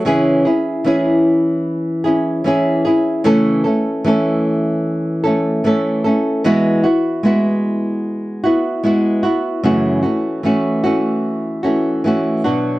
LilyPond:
\new Staff \with { instrumentName = "Nylon-string guitar" } { \time 4/4 \key fis \minor \tempo 4 = 75 <cis e cis' e' gis'>8 <cis' e' gis'>8 <e cis' e' gis'>4. <cis' e' gis'>8 <e cis' e' gis'>8 <cis' e' gis'>8 | <cis e a cis' a'>8 <a cis' a'>8 <e a cis' a'>4. <a cis' a'>8 <e a cis' a'>8 <a cis' a'>8 | <e gis b e' fis'>8 <b e' fis'>8 <gis b e' fis'>4. <b e' fis'>8 <gis b e' fis'>8 <b e' fis'>8 | <fis, cis e a cis' fis'>8 <e a cis' fis'>8 <e a cis' fis'>8 <e a cis' fis'>4 <e a cis' fis'>8 <e a cis' fis'>8 <b, fis b d' fis'>8 | }